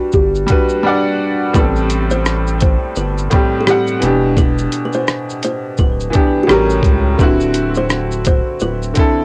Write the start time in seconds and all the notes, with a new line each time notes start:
Already playing: G3 D4 F#4 B4
0.12 G1 G4, kick, shaker
0.35 shaker
0.47 G3 D4 F#4, kick, closed hi-hat, shaker
0.52 B4
0.69 shaker
0.83 G3 D4 F#5
0.88 D5
1.53 A1 A2 G3 B3 B4, kick, shaker
1.59 A4
1.63 C4
1.76 shaker
1.90 closed hi-hat, shaker
2.10 C5, shaker
2.26 cross-stick, shaker
2.47 shaker
2.61 C5, kick, closed hi-hat, shaker
2.96 G1 B4, shaker
3.18 shaker
3.30 A2 G3 C4, kick, closed hi-hat, shaker
3.36 G4
3.61 A4
3.65 A2 G3 C4 G4, cross-stick, shaker
3.70 F#5
3.87 shaker
4.00 E1 B2 E3 D4, closed hi-hat, shaker
4.05 G4
4.37 B4, kick, shaker
4.58 shaker
4.72 closed hi-hat, shaker
4.85 B4
4.93 C5, shaker
5.07 cross-stick, shaker
5.29 shaker
5.43 C5, closed hi-hat, shaker
5.77 D1 B4, kick, shaker
6.00 shaker
6.10 E3 B3 D4, closed hi-hat, shaker
6.15 G4, kick
6.43 A2 F#4
6.49 A1 G3 C#4 G4 A#4, cross-stick, shaker
6.70 shaker
6.83 C#2, kick, closed hi-hat, shaker
7.18 D1 D3 C4 E4 B4, kick, shaker
7.23 F#4
7.40 shaker
7.54 closed hi-hat, shaker
7.75 C5, shaker
7.90 cross-stick, shaker
8.11 shaker
8.25 C5, kick, closed hi-hat, shaker
8.60 D1 B4, shaker
8.82 shaker
8.94 D3 C4 E4, kick, closed hi-hat, shaker
8.99 A4